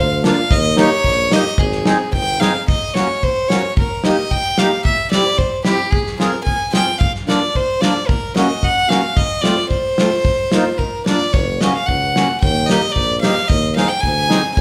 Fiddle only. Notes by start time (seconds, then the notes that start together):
0.00 F5
0.26 F5
0.51 D#5
0.80 C#5
1.33 D#5
1.60 G#4
2.13 G5
2.40 F5
2.68 D#5
2.94 C#5
3.23 C5
3.49 C#5
3.78 A#4
4.04 D#5
4.31 G5
4.59 F5
4.85 E5
5.11 D5
5.38 C5
5.65 G4
5.91 G#4
6.19 A#4
6.43 G#5
6.74 G5
6.99 F5
7.28 D5
7.56 C5
7.81 D5
8.07 A#4
8.36 D#5
8.64 F#5
8.89 F5
9.17 D#5
9.41 D5
9.69 C5
10.78 A#4
11.06 D5
11.33 C#5
11.61 D#5
11.74 F5
11.86 F#5
12.40 G5
12.67 D#5
12.92 D5
13.21 F5
13.48 D#5
13.76 F5
13.88 G5
14.00 G#5
14.54 G#5